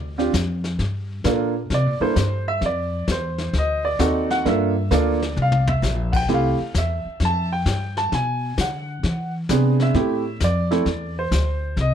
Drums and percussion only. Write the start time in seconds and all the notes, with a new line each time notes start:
0.19 snare
0.34 kick, snare, hi-hat pedal
0.64 snare
0.79 brush sweep, kick, snare
1.24 kick, snare, hi-hat pedal
1.70 brush sweep, kick, snare
2.16 kick, snare, hi-hat pedal
2.62 brush sweep, kick, snare
3.08 kick, snare, hi-hat pedal
3.38 snare
3.53 brush sweep, kick, snare
3.99 kick, snare, hi-hat pedal
4.30 snare
4.45 brush sweep, kick, snare
4.91 kick, snare, hi-hat pedal
5.22 snare
5.37 mid tom
5.52 mid tom
5.67 floor tom
5.83 snare, hi-hat pedal
6.13 kick, crash
6.28 brush sweep, kick, snare
6.74 kick, snare, hi-hat pedal
7.20 brush sweep, kick, snare
7.66 kick, snare, hi-hat pedal
7.97 snare
8.12 brush sweep, kick, snare
8.58 kick, snare, hi-hat pedal
9.03 brush sweep, kick, snare
9.49 kick, snare, hi-hat pedal
9.80 snare
9.94 brush sweep, kick, snare
10.40 kick, snare, hi-hat pedal
10.71 snare
10.86 brush sweep, kick, snare
11.31 kick, snare, hi-hat pedal
11.77 brush sweep, kick, snare